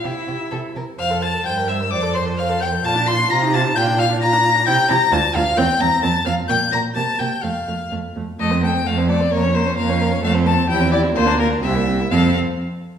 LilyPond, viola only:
\new Staff \with { instrumentName = "Viola" } { \time 2/4 \key f \major \tempo 4 = 130 e'4. r8 | c''16 a'16 c''16 a'16 c''16 bes'16 c''16 bes'16 | c''16 a'16 c''16 a'16 c''16 a'16 c''16 a'16 | f'16 d'16 f'16 d'16 f'16 ees'16 f'16 ees'16 |
f'16 d'16 f'16 d'16 f'16 d'16 f'16 d'16 | e'8 e'8 f'8 f'8 | c'8 c'8 c'8 c'8 | bes8 bes8 bes8 bes8 |
a8 a8 a8 a8 | a16 c'16 a16 c'16 a16 c'16 a16 c'16 | bes16 des'16 bes16 des'16 bes16 des'16 bes16 des'16 | a16 c'16 a16 c'16 e'16 c'16 e'16 c'16 |
bes16 d'16 bes16 d'16 c'16 bes16 c'16 bes16 | c'8 r4. | }